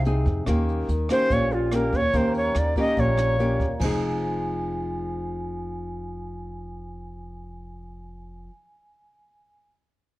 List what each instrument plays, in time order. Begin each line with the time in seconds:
Already playing: upright bass C2, nylon-string guitar C3
0.05 nylon-string guitar C4 D#4 G#4, closed hi-hat
0.26 upright bass F2, kick, closed hi-hat
0.47 upright bass D#2, nylon-string guitar D#3 A#3 C#4 G4, kick, cross-stick, closed hi-hat
0.69 closed hi-hat
0.88 upright bass D#2, closed hi-hat
1.09 nylon-string guitar A#3 C#4 G4, shakuhachi C5, cross-stick, closed hi-hat
1.30 upright bass A#1, nylon-string guitar A#2, shakuhachi C#5, kick, closed hi-hat
1.51 shakuhachi F4, closed hi-hat
1.72 nylon-string guitar A#3 C#4 G4, shakuhachi A#4, cross-stick, closed hi-hat
1.92 upright bass D#2, shakuhachi C#5, kick, closed hi-hat
2.13 upright bass D#2, nylon-string guitar D#3 A#3 C#4 G4, vibraphone A#5, kick, closed hi-hat
2.17 shakuhachi C5
2.34 shakuhachi C#5, closed hi-hat
2.55 upright bass D#2, shakuhachi D5, cross-stick, closed hi-hat
2.76 nylon-string guitar A#3 C#4 G4, shakuhachi D#5, kick, closed hi-hat
2.97 upright bass A#1, nylon-string guitar A#2, shakuhachi C#5, kick, closed hi-hat
3.17 cross-stick, closed hi-hat
3.39 nylon-string guitar A#3 C#4 G4, closed hi-hat
3.60 upright bass D#2, kick, closed hi-hat
3.79 upright bass F1, nylon-string guitar F3 C4, vibraphone G#5, kick, crash
3.84 nylon-string guitar D#4 G#4